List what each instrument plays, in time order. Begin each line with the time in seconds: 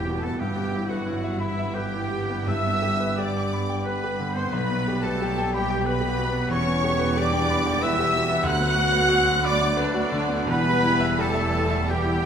Already playing: double bass section E1, cello section E2, grand piano E2 B3 E4 G4 B4 E5 G5, french horn section G3, trombone section G3 B3, viola section G4, violin section G4 G5, trumpet section G4, oboe G4, flute G5
0.06 grand piano B2
0.19 french horn section A3, violin section A4, trumpet section A4, viola section A4, flute A5
0.23 grand piano B3, oboe A4, violin section A5
0.35 double bass section G1, cello section G2, trombone section E3, french horn section G3, trumpet section G4, violin section G4 G5, viola section G4, flute G5
0.40 grand piano G2, oboe G4
0.56 grand piano B3
0.74 grand piano E4
0.86 french horn section F#3, trumpet section F#4, violin section F#4 F#5, viola section F#4, oboe F#4, flute F#5
0.90 grand piano B4
1.06 grand piano E4
1.24 grand piano E5
1.38 french horn section E3, trumpet section E4, oboe E4, viola section E4, violin section E4 E5, flute E5, grand piano B5
1.59 grand piano E5
1.74 french horn section G3, trumpet section G4, oboe G4, viola section G4, violin section G4 G5, grand piano B4, flute G5
1.93 grand piano E4
2.10 grand piano G3
2.30 grand piano B3
2.47 grand piano G2, trombone section G3 B3, french horn section E4, viola section E5, violin section E5 E6, trumpet section E5, oboe E5, flute E6
2.66 grand piano B3
2.82 grand piano G4
3.00 grand piano B4
3.15 grand piano G4, trumpet section D5, violin section D5, flute D6
3.19 french horn section D4, oboe D5, viola section D5, violin section D6
3.36 grand piano G5
3.53 grand piano B5
3.70 grand piano G5
3.85 french horn section B3, oboe B4, trumpet section B4, violin section B4 B5, viola section B4, grand piano B4, flute B5
4.04 grand piano G4
4.19 grand piano D3
4.33 grand piano B3, french horn section C4, oboe C5, trumpet section C5, viola section C5, violin section C5, flute C6
4.38 violin section C6
4.50 double bass section B1, grand piano B1, cello section B2, french horn section B3, viola section B4, oboe B4, trumpet section B4, violin section B4 B5, flute B5
4.71 grand piano B3
4.88 grand piano G4
4.99 french horn section A3, viola section A4, flute A5, violin section A5
5.04 oboe A4, trumpet section A4, violin section A4, grand piano B4
5.22 grand piano G4
5.38 grand piano G5
5.51 french horn section G3, viola section G4, oboe G4, trumpet section G4, violin section G4 G5, flute G5, grand piano B5
5.70 grand piano G5
5.84 french horn section B3, grand piano B4, viola section B4, trumpet section B4, oboe B4, violin section B4 B5, flute B5
6.01 grand piano G4
6.17 grand piano B2
6.32 grand piano B3
6.48 double bass section E1, grand piano E2, trombone section G3 B3, french horn section C#4, violin section C#5, trumpet section C#5, oboe C#5, viola section C#5, flute C#6
6.53 cello section E2, violin section C#6
6.66 grand piano B3
6.84 grand piano G4
6.99 grand piano B4
7.16 french horn section D4, grand piano G4, trumpet section D5, viola section D5, violin section D5 D6, oboe D5, flute D6
7.33 grand piano G5
7.50 grand piano B5
7.67 grand piano G5
7.81 french horn section E4, grand piano B4, trumpet section E5, violin section E5 E6, oboe E5, viola section E5, flute E6
7.99 grand piano G4
8.15 grand piano B2
8.29 grand piano B3
8.43 grand piano D2, double bass section D2, trombone section F#3, viola section F#5, flute F#6, violin section F#6
8.47 cello section D2, french horn section F#4, trumpet section F#5, violin section F#5, oboe F#5
8.59 grand piano B3
8.75 grand piano F#4
8.93 grand piano B4
9.08 grand piano F#4
9.26 grand piano F#5
9.43 oboe D5, trumpet section D5, viola section D5, grand piano B5, violin section D6, flute D6
9.47 french horn section D4, violin section D5
9.61 grand piano F#5
9.77 french horn section D3, oboe D4, viola section D4, violin section D4 D5, trumpet section D4, grand piano B4, flute D5
9.94 grand piano F#4
10.12 grand piano D3
10.28 grand piano B3
10.47 double bass section E1, grand piano E2, cello section E2, trombone section E3 G3, french horn section B3, viola section B4, oboe B4, violin section B4 B5, trumpet section B4, flute B5
10.68 grand piano G3
10.83 grand piano E4
11.00 grand piano E5
11.18 french horn section A3, grand piano G4, violin section A4 A5, oboe A4, viola section A4, trumpet section A4, flute A5
11.34 grand piano E5
11.51 grand piano E6
11.70 grand piano E5
11.88 french horn section G3, oboe G4, violin section G4 G5, grand piano G4, trumpet section G4, flute G5
11.92 viola section G4
12.04 grand piano E4